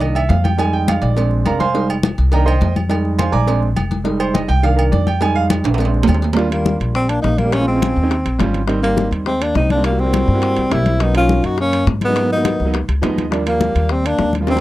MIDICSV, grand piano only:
0, 0, Header, 1, 2, 480
1, 0, Start_track
1, 0, Key_signature, -3, "major"
1, 0, Tempo, 289575
1, 973, Time_signature, 4, 2, 24, 8
1, 24209, End_track
2, 0, Start_track
2, 0, Title_t, "Grand piano"
2, 0, Program_c, 0, 0
2, 0, Note_on_c, 0, 51, 58
2, 0, Note_on_c, 0, 58, 52
2, 10, Note_on_c, 0, 75, 78
2, 12, Note_on_c, 0, 62, 66
2, 245, Note_off_c, 0, 75, 0
2, 250, Note_on_c, 0, 76, 100
2, 322, Note_off_c, 0, 51, 0
2, 326, Note_off_c, 0, 58, 0
2, 332, Note_off_c, 0, 62, 0
2, 477, Note_on_c, 0, 77, 87
2, 485, Note_off_c, 0, 76, 0
2, 718, Note_off_c, 0, 77, 0
2, 731, Note_on_c, 0, 79, 91
2, 954, Note_on_c, 0, 55, 56
2, 965, Note_off_c, 0, 79, 0
2, 965, Note_on_c, 0, 56, 52
2, 975, Note_on_c, 0, 80, 107
2, 977, Note_on_c, 0, 63, 68
2, 1207, Note_off_c, 0, 80, 0
2, 1213, Note_on_c, 0, 79, 93
2, 1446, Note_off_c, 0, 79, 0
2, 1457, Note_on_c, 0, 77, 84
2, 1685, Note_on_c, 0, 74, 86
2, 1687, Note_off_c, 0, 77, 0
2, 1874, Note_off_c, 0, 55, 0
2, 1880, Note_off_c, 0, 56, 0
2, 1886, Note_off_c, 0, 63, 0
2, 1927, Note_on_c, 0, 56, 56
2, 1939, Note_on_c, 0, 60, 51
2, 1945, Note_on_c, 0, 62, 63
2, 2134, Note_off_c, 0, 74, 0
2, 2426, Note_on_c, 0, 70, 68
2, 2427, Note_on_c, 0, 82, 89
2, 2429, Note_on_c, 0, 77, 67
2, 2433, Note_on_c, 0, 74, 69
2, 2612, Note_off_c, 0, 56, 0
2, 2619, Note_off_c, 0, 60, 0
2, 2622, Note_off_c, 0, 62, 0
2, 2635, Note_off_c, 0, 77, 0
2, 2649, Note_on_c, 0, 84, 98
2, 2652, Note_off_c, 0, 70, 0
2, 2652, Note_off_c, 0, 82, 0
2, 2655, Note_off_c, 0, 74, 0
2, 2659, Note_on_c, 0, 80, 80
2, 2660, Note_on_c, 0, 72, 84
2, 2660, Note_on_c, 0, 77, 83
2, 2878, Note_on_c, 0, 56, 58
2, 2880, Note_on_c, 0, 55, 58
2, 2893, Note_on_c, 0, 63, 62
2, 3096, Note_off_c, 0, 84, 0
2, 3101, Note_off_c, 0, 80, 0
2, 3102, Note_off_c, 0, 72, 0
2, 3102, Note_off_c, 0, 77, 0
2, 3203, Note_off_c, 0, 56, 0
2, 3204, Note_off_c, 0, 55, 0
2, 3211, Note_off_c, 0, 63, 0
2, 3849, Note_on_c, 0, 51, 55
2, 3861, Note_on_c, 0, 58, 54
2, 3870, Note_on_c, 0, 82, 91
2, 3873, Note_on_c, 0, 75, 66
2, 3873, Note_on_c, 0, 79, 73
2, 3875, Note_on_c, 0, 62, 67
2, 3880, Note_on_c, 0, 70, 74
2, 4051, Note_off_c, 0, 75, 0
2, 4051, Note_off_c, 0, 79, 0
2, 4073, Note_on_c, 0, 84, 91
2, 4075, Note_on_c, 0, 79, 74
2, 4076, Note_on_c, 0, 75, 84
2, 4080, Note_on_c, 0, 72, 80
2, 4093, Note_off_c, 0, 82, 0
2, 4098, Note_off_c, 0, 70, 0
2, 4168, Note_off_c, 0, 51, 0
2, 4175, Note_off_c, 0, 58, 0
2, 4182, Note_off_c, 0, 62, 0
2, 4527, Note_off_c, 0, 84, 0
2, 4528, Note_off_c, 0, 75, 0
2, 4528, Note_off_c, 0, 79, 0
2, 4530, Note_off_c, 0, 72, 0
2, 4791, Note_on_c, 0, 55, 59
2, 4803, Note_on_c, 0, 56, 56
2, 4804, Note_on_c, 0, 63, 64
2, 5281, Note_on_c, 0, 84, 92
2, 5291, Note_on_c, 0, 72, 67
2, 5295, Note_on_c, 0, 80, 69
2, 5298, Note_on_c, 0, 77, 67
2, 5487, Note_off_c, 0, 80, 0
2, 5508, Note_on_c, 0, 74, 80
2, 5508, Note_on_c, 0, 82, 75
2, 5508, Note_on_c, 0, 86, 106
2, 5512, Note_on_c, 0, 80, 79
2, 5517, Note_off_c, 0, 84, 0
2, 5522, Note_off_c, 0, 72, 0
2, 5525, Note_off_c, 0, 77, 0
2, 5710, Note_off_c, 0, 55, 0
2, 5716, Note_off_c, 0, 56, 0
2, 5717, Note_off_c, 0, 63, 0
2, 5741, Note_on_c, 0, 56, 62
2, 5755, Note_on_c, 0, 60, 54
2, 5755, Note_on_c, 0, 62, 68
2, 5963, Note_off_c, 0, 74, 0
2, 5963, Note_off_c, 0, 82, 0
2, 5963, Note_off_c, 0, 86, 0
2, 5965, Note_off_c, 0, 80, 0
2, 6072, Note_off_c, 0, 56, 0
2, 6079, Note_off_c, 0, 62, 0
2, 6080, Note_off_c, 0, 60, 0
2, 6701, Note_on_c, 0, 55, 59
2, 6712, Note_on_c, 0, 56, 53
2, 6715, Note_on_c, 0, 63, 68
2, 6959, Note_on_c, 0, 72, 92
2, 7194, Note_off_c, 0, 72, 0
2, 7196, Note_on_c, 0, 75, 78
2, 7395, Note_off_c, 0, 55, 0
2, 7401, Note_off_c, 0, 56, 0
2, 7403, Note_off_c, 0, 63, 0
2, 7433, Note_off_c, 0, 75, 0
2, 7433, Note_on_c, 0, 79, 117
2, 7671, Note_off_c, 0, 79, 0
2, 7674, Note_on_c, 0, 51, 61
2, 7678, Note_on_c, 0, 77, 98
2, 7683, Note_on_c, 0, 58, 53
2, 7691, Note_on_c, 0, 62, 61
2, 7895, Note_on_c, 0, 70, 74
2, 7913, Note_off_c, 0, 77, 0
2, 8141, Note_off_c, 0, 70, 0
2, 8154, Note_on_c, 0, 74, 95
2, 8361, Note_off_c, 0, 51, 0
2, 8366, Note_off_c, 0, 58, 0
2, 8370, Note_off_c, 0, 62, 0
2, 8391, Note_off_c, 0, 74, 0
2, 8399, Note_on_c, 0, 79, 94
2, 8633, Note_off_c, 0, 79, 0
2, 8636, Note_on_c, 0, 55, 57
2, 8644, Note_on_c, 0, 56, 52
2, 8650, Note_on_c, 0, 63, 70
2, 8653, Note_on_c, 0, 80, 110
2, 8876, Note_on_c, 0, 77, 112
2, 8880, Note_off_c, 0, 80, 0
2, 9021, Note_off_c, 0, 77, 0
2, 9322, Note_off_c, 0, 55, 0
2, 9326, Note_off_c, 0, 56, 0
2, 9329, Note_off_c, 0, 63, 0
2, 9588, Note_on_c, 0, 56, 62
2, 9601, Note_on_c, 0, 60, 58
2, 9610, Note_on_c, 0, 62, 61
2, 10277, Note_off_c, 0, 56, 0
2, 10284, Note_off_c, 0, 60, 0
2, 10289, Note_off_c, 0, 62, 0
2, 10528, Note_on_c, 0, 55, 88
2, 10537, Note_on_c, 0, 58, 80
2, 10547, Note_on_c, 0, 62, 81
2, 10563, Note_on_c, 0, 65, 100
2, 10711, Note_off_c, 0, 55, 0
2, 10716, Note_off_c, 0, 58, 0
2, 10721, Note_off_c, 0, 62, 0
2, 10729, Note_off_c, 0, 65, 0
2, 10776, Note_on_c, 0, 55, 71
2, 10786, Note_on_c, 0, 58, 65
2, 10798, Note_on_c, 0, 62, 62
2, 10802, Note_on_c, 0, 65, 73
2, 11459, Note_off_c, 0, 55, 0
2, 11464, Note_off_c, 0, 58, 0
2, 11470, Note_off_c, 0, 62, 0
2, 11472, Note_off_c, 0, 65, 0
2, 12332, Note_on_c, 0, 55, 73
2, 12338, Note_on_c, 0, 58, 68
2, 12357, Note_on_c, 0, 67, 75
2, 12358, Note_on_c, 0, 62, 65
2, 12465, Note_off_c, 0, 55, 0
2, 12468, Note_off_c, 0, 58, 0
2, 12477, Note_off_c, 0, 67, 0
2, 12478, Note_off_c, 0, 62, 0
2, 12582, Note_on_c, 0, 56, 71
2, 12597, Note_on_c, 0, 60, 59
2, 12601, Note_on_c, 0, 61, 63
2, 12620, Note_on_c, 0, 65, 75
2, 12758, Note_off_c, 0, 56, 0
2, 12765, Note_off_c, 0, 60, 0
2, 12767, Note_off_c, 0, 61, 0
2, 12777, Note_off_c, 0, 65, 0
2, 12825, Note_on_c, 0, 56, 76
2, 12830, Note_on_c, 0, 60, 61
2, 12846, Note_on_c, 0, 61, 64
2, 12855, Note_on_c, 0, 65, 82
2, 12916, Note_off_c, 0, 56, 0
2, 12918, Note_off_c, 0, 60, 0
2, 12926, Note_off_c, 0, 61, 0
2, 12930, Note_off_c, 0, 65, 0
2, 12943, Note_on_c, 0, 56, 68
2, 12952, Note_on_c, 0, 60, 59
2, 12964, Note_on_c, 0, 61, 59
2, 12976, Note_on_c, 0, 65, 65
2, 13202, Note_off_c, 0, 56, 0
2, 13207, Note_off_c, 0, 60, 0
2, 13213, Note_off_c, 0, 61, 0
2, 13219, Note_off_c, 0, 65, 0
2, 13294, Note_on_c, 0, 56, 76
2, 13306, Note_on_c, 0, 60, 78
2, 13309, Note_on_c, 0, 61, 77
2, 13319, Note_on_c, 0, 63, 90
2, 13426, Note_off_c, 0, 56, 0
2, 13432, Note_off_c, 0, 60, 0
2, 13434, Note_off_c, 0, 61, 0
2, 13439, Note_off_c, 0, 63, 0
2, 13902, Note_on_c, 0, 55, 90
2, 13913, Note_on_c, 0, 60, 81
2, 13920, Note_on_c, 0, 61, 83
2, 13929, Note_on_c, 0, 65, 97
2, 14246, Note_off_c, 0, 55, 0
2, 14252, Note_off_c, 0, 60, 0
2, 14255, Note_off_c, 0, 61, 0
2, 14259, Note_off_c, 0, 65, 0
2, 14376, Note_on_c, 0, 55, 90
2, 14376, Note_on_c, 0, 58, 77
2, 14391, Note_on_c, 0, 60, 81
2, 14400, Note_on_c, 0, 63, 103
2, 14555, Note_off_c, 0, 55, 0
2, 14555, Note_off_c, 0, 58, 0
2, 14563, Note_off_c, 0, 60, 0
2, 14567, Note_off_c, 0, 63, 0
2, 14614, Note_on_c, 0, 55, 72
2, 14616, Note_on_c, 0, 58, 60
2, 14629, Note_on_c, 0, 60, 66
2, 14639, Note_on_c, 0, 63, 73
2, 15298, Note_off_c, 0, 55, 0
2, 15299, Note_off_c, 0, 58, 0
2, 15306, Note_off_c, 0, 60, 0
2, 15311, Note_off_c, 0, 63, 0
2, 16166, Note_on_c, 0, 55, 70
2, 16182, Note_on_c, 0, 58, 70
2, 16188, Note_on_c, 0, 60, 72
2, 16201, Note_on_c, 0, 63, 80
2, 16302, Note_off_c, 0, 55, 0
2, 16310, Note_off_c, 0, 58, 0
2, 16313, Note_off_c, 0, 60, 0
2, 16320, Note_off_c, 0, 63, 0
2, 16405, Note_on_c, 0, 55, 66
2, 16410, Note_on_c, 0, 58, 64
2, 16426, Note_on_c, 0, 64, 59
2, 16435, Note_on_c, 0, 66, 73
2, 16590, Note_off_c, 0, 55, 0
2, 16592, Note_off_c, 0, 58, 0
2, 16600, Note_off_c, 0, 64, 0
2, 16605, Note_off_c, 0, 66, 0
2, 16648, Note_on_c, 0, 55, 72
2, 16657, Note_on_c, 0, 58, 71
2, 16671, Note_on_c, 0, 64, 66
2, 16685, Note_on_c, 0, 66, 80
2, 16747, Note_off_c, 0, 55, 0
2, 16752, Note_off_c, 0, 58, 0
2, 16759, Note_off_c, 0, 64, 0
2, 16766, Note_off_c, 0, 66, 0
2, 16774, Note_on_c, 0, 55, 67
2, 16787, Note_on_c, 0, 58, 65
2, 16791, Note_on_c, 0, 64, 54
2, 16801, Note_on_c, 0, 66, 72
2, 17039, Note_off_c, 0, 55, 0
2, 17045, Note_off_c, 0, 58, 0
2, 17047, Note_off_c, 0, 64, 0
2, 17052, Note_off_c, 0, 66, 0
2, 17134, Note_on_c, 0, 55, 80
2, 17137, Note_on_c, 0, 58, 71
2, 17148, Note_on_c, 0, 64, 78
2, 17161, Note_on_c, 0, 66, 96
2, 17567, Note_off_c, 0, 55, 0
2, 17568, Note_off_c, 0, 58, 0
2, 17574, Note_off_c, 0, 64, 0
2, 17580, Note_off_c, 0, 66, 0
2, 17735, Note_on_c, 0, 55, 78
2, 17744, Note_on_c, 0, 58, 65
2, 17757, Note_on_c, 0, 64, 66
2, 17764, Note_on_c, 0, 67, 82
2, 18083, Note_off_c, 0, 55, 0
2, 18088, Note_off_c, 0, 58, 0
2, 18094, Note_off_c, 0, 64, 0
2, 18098, Note_off_c, 0, 67, 0
2, 18213, Note_on_c, 0, 54, 75
2, 18227, Note_on_c, 0, 58, 65
2, 18235, Note_on_c, 0, 61, 62
2, 18243, Note_on_c, 0, 63, 78
2, 18394, Note_off_c, 0, 54, 0
2, 18402, Note_off_c, 0, 58, 0
2, 18405, Note_off_c, 0, 61, 0
2, 18409, Note_off_c, 0, 63, 0
2, 18455, Note_on_c, 0, 54, 64
2, 18463, Note_on_c, 0, 58, 63
2, 18474, Note_on_c, 0, 61, 60
2, 18482, Note_on_c, 0, 63, 75
2, 19140, Note_off_c, 0, 54, 0
2, 19144, Note_off_c, 0, 58, 0
2, 19149, Note_off_c, 0, 61, 0
2, 19153, Note_off_c, 0, 63, 0
2, 20016, Note_on_c, 0, 54, 77
2, 20026, Note_on_c, 0, 58, 65
2, 20039, Note_on_c, 0, 61, 61
2, 20053, Note_on_c, 0, 63, 85
2, 20149, Note_off_c, 0, 54, 0
2, 20154, Note_off_c, 0, 58, 0
2, 20160, Note_off_c, 0, 61, 0
2, 20167, Note_off_c, 0, 63, 0
2, 20258, Note_on_c, 0, 54, 69
2, 20268, Note_on_c, 0, 58, 63
2, 20278, Note_on_c, 0, 59, 66
2, 20294, Note_on_c, 0, 63, 74
2, 20438, Note_off_c, 0, 54, 0
2, 20443, Note_off_c, 0, 58, 0
2, 20448, Note_off_c, 0, 59, 0
2, 20456, Note_off_c, 0, 63, 0
2, 20496, Note_on_c, 0, 54, 72
2, 20510, Note_on_c, 0, 58, 69
2, 20520, Note_on_c, 0, 59, 66
2, 20525, Note_on_c, 0, 63, 88
2, 20591, Note_off_c, 0, 54, 0
2, 20600, Note_off_c, 0, 58, 0
2, 20605, Note_off_c, 0, 59, 0
2, 20607, Note_off_c, 0, 63, 0
2, 20616, Note_on_c, 0, 54, 63
2, 20627, Note_on_c, 0, 58, 66
2, 20639, Note_on_c, 0, 59, 58
2, 20650, Note_on_c, 0, 63, 74
2, 20881, Note_off_c, 0, 54, 0
2, 20887, Note_off_c, 0, 58, 0
2, 20893, Note_off_c, 0, 59, 0
2, 20899, Note_off_c, 0, 63, 0
2, 20969, Note_on_c, 0, 54, 81
2, 20980, Note_on_c, 0, 58, 74
2, 20988, Note_on_c, 0, 59, 69
2, 20998, Note_on_c, 0, 63, 92
2, 21106, Note_off_c, 0, 54, 0
2, 21111, Note_off_c, 0, 58, 0
2, 21115, Note_off_c, 0, 59, 0
2, 21121, Note_off_c, 0, 63, 0
2, 21574, Note_on_c, 0, 53, 88
2, 21585, Note_on_c, 0, 56, 78
2, 21591, Note_on_c, 0, 75, 73
2, 21595, Note_on_c, 0, 59, 88
2, 21609, Note_on_c, 0, 63, 102
2, 21925, Note_off_c, 0, 53, 0
2, 21931, Note_off_c, 0, 56, 0
2, 21936, Note_off_c, 0, 59, 0
2, 21943, Note_off_c, 0, 63, 0
2, 22044, Note_off_c, 0, 75, 0
2, 22055, Note_on_c, 0, 53, 89
2, 22067, Note_on_c, 0, 55, 82
2, 22077, Note_on_c, 0, 58, 79
2, 22088, Note_on_c, 0, 62, 98
2, 22238, Note_off_c, 0, 53, 0
2, 22244, Note_off_c, 0, 55, 0
2, 22249, Note_off_c, 0, 58, 0
2, 22254, Note_off_c, 0, 62, 0
2, 22312, Note_on_c, 0, 53, 72
2, 22318, Note_on_c, 0, 55, 65
2, 22333, Note_on_c, 0, 58, 64
2, 22339, Note_on_c, 0, 62, 74
2, 22992, Note_off_c, 0, 53, 0
2, 22995, Note_off_c, 0, 55, 0
2, 23002, Note_off_c, 0, 58, 0
2, 23005, Note_off_c, 0, 62, 0
2, 23872, Note_on_c, 0, 53, 72
2, 23883, Note_on_c, 0, 55, 65
2, 23896, Note_on_c, 0, 58, 62
2, 23906, Note_on_c, 0, 65, 78
2, 24048, Note_off_c, 0, 53, 0
2, 24054, Note_off_c, 0, 55, 0
2, 24060, Note_off_c, 0, 58, 0
2, 24065, Note_off_c, 0, 65, 0
2, 24113, Note_on_c, 0, 53, 69
2, 24124, Note_on_c, 0, 55, 60
2, 24134, Note_on_c, 0, 58, 64
2, 24136, Note_on_c, 0, 62, 75
2, 24209, Note_off_c, 0, 53, 0
2, 24209, Note_off_c, 0, 55, 0
2, 24209, Note_off_c, 0, 58, 0
2, 24209, Note_off_c, 0, 62, 0
2, 24209, End_track
0, 0, End_of_file